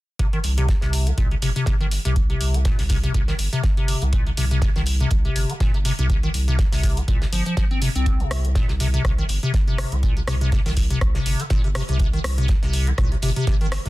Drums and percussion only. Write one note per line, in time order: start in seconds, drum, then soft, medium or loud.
0.19 kick loud
0.19 closed hi-hat medium
0.33 closed hi-hat soft
0.44 closed hi-hat medium
0.44 open hi-hat loud
0.58 closed hi-hat medium
0.68 kick loud
0.68 snare loud
0.68 closed hi-hat soft
0.68 closed hi-hat medium
0.81 snare medium
0.81 closed hi-hat soft
0.93 closed hi-hat medium
0.93 open hi-hat loud
1.07 closed hi-hat medium
1.18 kick loud
1.18 closed hi-hat medium
1.31 closed hi-hat soft
1.42 closed hi-hat medium
1.42 open hi-hat loud
1.56 closed hi-hat soft
1.66 kick loud
1.66 snare loud
1.66 closed hi-hat medium
1.81 closed hi-hat soft
1.91 closed hi-hat medium
1.91 open hi-hat medium
2.05 closed hi-hat medium
2.16 kick loud
2.16 closed hi-hat soft
2.16 closed hi-hat medium
2.30 closed hi-hat soft
2.41 closed hi-hat medium
2.41 open hi-hat loud
2.54 closed hi-hat medium
2.65 kick loud
2.65 snare loud
2.65 closed hi-hat medium
2.65 closed hi-hat soft
2.78 snare soft
2.78 open hi-hat medium
2.89 kick medium
2.89 snare soft
2.89 closed hi-hat medium
2.89 open hi-hat loud
3.03 closed hi-hat medium
3.03 closed hi-hat soft
3.14 kick loud
3.14 closed hi-hat soft
3.14 closed hi-hat medium
3.28 snare soft
3.28 closed hi-hat soft
3.39 closed hi-hat medium
3.39 open hi-hat loud
3.53 closed hi-hat soft
3.63 kick loud
3.63 snare medium
3.63 closed hi-hat soft
3.63 closed hi-hat medium
3.77 closed hi-hat soft
3.88 closed hi-hat medium
3.88 open hi-hat loud
4.01 closed hi-hat soft
4.13 kick loud
4.13 closed hi-hat medium
4.13 closed hi-hat soft
4.27 closed hi-hat soft
4.37 closed hi-hat medium
4.37 open hi-hat loud
4.51 closed hi-hat soft
4.62 kick loud
4.62 snare loud
4.62 closed hi-hat soft
4.62 closed hi-hat medium
4.76 snare medium
4.76 closed hi-hat soft
4.86 closed hi-hat medium
4.86 open hi-hat loud
5.00 closed hi-hat soft
5.11 kick loud
5.11 closed hi-hat medium
5.11 closed hi-hat soft
5.25 closed hi-hat soft
5.36 closed hi-hat medium
5.36 open hi-hat loud
5.50 closed hi-hat soft
5.60 kick loud
5.60 snare loud
5.60 closed hi-hat medium
5.60 closed hi-hat soft
5.74 closed hi-hat soft
5.85 closed hi-hat medium
5.85 open hi-hat loud
5.99 closed hi-hat soft
6.10 kick loud
6.10 closed hi-hat soft
6.10 closed hi-hat medium
6.23 closed hi-hat soft
6.34 closed hi-hat medium
6.34 open hi-hat loud
6.48 closed hi-hat soft
6.59 kick loud
6.59 snare medium
6.59 closed hi-hat medium
6.59 closed hi-hat soft
6.72 snare medium
6.72 open hi-hat medium
6.83 kick medium
6.83 snare soft
6.83 closed hi-hat medium
6.83 open hi-hat loud
6.97 closed hi-hat soft
7.08 kick loud
7.08 closed hi-hat soft
7.08 closed hi-hat loud
7.22 snare medium
7.22 closed hi-hat soft
7.33 closed hi-hat medium
7.33 open hi-hat loud
7.45 closed hi-hat soft
7.57 kick loud
7.57 snare loud
7.57 closed hi-hat medium
7.57 closed hi-hat soft
7.71 closed hi-hat soft
7.81 closed hi-hat medium
7.81 open hi-hat loud
7.96 closed hi-hat soft
8.06 kick loud
8.06 closed hi-hat medium
8.06 closed hi-hat soft
8.20 closed hi-hat soft
8.31 cross-stick medium
8.31 closed hi-hat medium
8.31 open hi-hat loud
8.45 closed hi-hat soft
8.55 kick loud
8.55 snare medium
8.55 closed hi-hat medium
8.55 closed hi-hat soft
8.68 snare soft
8.68 closed hi-hat soft
8.80 closed hi-hat medium
8.80 open hi-hat loud
8.94 closed hi-hat soft
9.05 kick loud
9.05 cross-stick medium
9.05 closed hi-hat soft
9.05 closed hi-hat medium
9.18 closed hi-hat soft
9.29 closed hi-hat medium
9.29 open hi-hat medium
9.43 closed hi-hat soft
9.54 kick loud
9.54 snare loud
9.54 closed hi-hat soft
9.54 closed hi-hat medium
9.68 closed hi-hat soft
9.78 cross-stick medium
9.78 closed hi-hat medium
9.78 open hi-hat loud
9.92 closed hi-hat soft
10.03 kick loud
10.03 closed hi-hat medium
10.17 closed hi-hat soft
10.28 cross-stick medium
10.28 closed hi-hat medium
10.28 open hi-hat medium
10.41 closed hi-hat soft
10.52 kick loud
10.52 snare loud
10.52 closed hi-hat soft
10.52 closed hi-hat medium
10.66 snare medium
10.66 open hi-hat medium
10.76 kick medium
10.76 snare soft
10.76 closed hi-hat medium
10.76 open hi-hat loud
10.90 closed hi-hat medium
10.90 closed hi-hat soft
11.01 kick loud
11.01 cross-stick medium
11.01 closed hi-hat medium
11.15 snare medium
11.15 closed hi-hat soft
11.26 closed hi-hat medium
11.26 open hi-hat loud
11.40 closed hi-hat soft
11.50 kick loud
11.50 snare loud
11.50 closed hi-hat medium
11.50 closed hi-hat soft
11.64 closed hi-hat soft
11.75 cross-stick medium
11.75 closed hi-hat medium
11.75 open hi-hat loud
11.88 closed hi-hat soft
11.88 closed hi-hat medium
11.99 kick loud
11.99 closed hi-hat medium
12.13 closed hi-hat soft
12.24 cross-stick medium
12.24 closed hi-hat medium
12.24 open hi-hat loud
12.38 closed hi-hat medium
12.48 kick loud
12.48 snare loud
12.48 closed hi-hat medium
12.48 closed hi-hat soft
12.63 snare medium
12.63 closed hi-hat soft
12.73 closed hi-hat medium
12.73 open hi-hat loud
12.87 closed hi-hat medium
12.98 kick loud
12.98 cross-stick medium
12.98 closed hi-hat medium
13.12 closed hi-hat soft
13.22 closed hi-hat medium
13.22 open hi-hat loud
13.36 closed hi-hat soft
13.47 kick loud
13.47 snare medium
13.47 closed hi-hat medium
13.47 closed hi-hat soft
13.61 closed hi-hat soft
13.72 cross-stick medium
13.72 snare loud
13.72 closed hi-hat medium
13.72 open hi-hat medium
13.86 snare soft
13.86 closed hi-hat medium